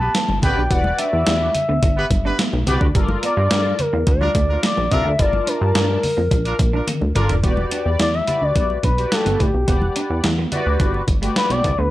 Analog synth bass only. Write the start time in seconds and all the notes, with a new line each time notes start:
0.29 G1
0.43 A1
0.57 B1
0.71 E1
1.13 E2
1.27 E2
1.69 D2
1.83 G1
2.11 G1
2.53 B1
2.67 C2
2.81 D2
2.95 G1
3.37 G2
3.51 G2
3.93 E2
4.07 D2
4.35 D2
4.77 A#1
4.92 C2
5.05 D2
5.19 G1
5.61 G2
5.75 G2
6.17 F2
6.31 A#1
6.59 A#1
7.01 D2
7.16 G1
7.29 F1
7.44 E1
7.86 E2
7.99 E2
8.41 D2
8.56 B1
8.84 B1
9.26 G1
9.40 A1
9.54 B1
9.68 E1
10.10 E2
10.24 E2
10.66 D2
10.80 G1
11.08 G1
11.50 B1
11.64 C2
11.79 D2